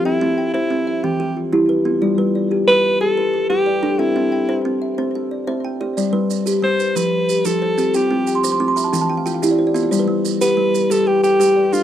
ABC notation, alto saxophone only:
X:1
M:12/8
L:1/8
Q:3/8=122
K:Gmix
V:1 name="Alto saxophone"
E3 E3 G2 z4 | z4 B2 A3 G3 | E4 z8 | z4 c2 B3 A3 |
G4 z8 | z3 B3 A G G3 F |]